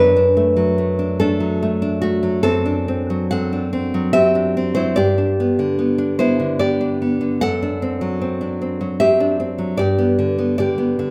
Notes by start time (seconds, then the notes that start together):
Already playing: F#2 D4 B4
0.16 D4
0.37 A3
0.57 F#3
0.78 A3
0.99 D4
1.20 A3 D4 A4
1.40 F#3
1.63 A3
1.82 D4
2.02 A3 F#4
2.23 F#3
2.43 F#2 C4 A4
2.65 D4
2.88 C4
3.10 F#3
3.31 C4 A4 F#5
3.53 D4
3.73 C4
3.94 F#3
4.13 C4 G4 E5
4.35 D4
4.57 C4
4.75 F#3 E4 C5
4.96 G2 G4 D5
5.18 D4
5.40 B3
5.59 D3
5.79 B3
5.98 D4
6.19 B3 E4 C5
6.40 D3
6.59 B3 G4 D5
6.81 D4
7.02 B3
7.21 D3
7.41 F#2 A4 F#5
7.62 D4
7.82 C4
8.01 F#3
8.21 C4
8.41 D4
8.62 C4
8.81 F#3
9.00 C4 G4 E5
9.20 D4
9.40 C4
9.58 F#3
9.77 G2 G4 D5
9.98 B3
10.19 D3
10.38 B3
10.58 D3 G4 D5
10.78 B3
10.99 D3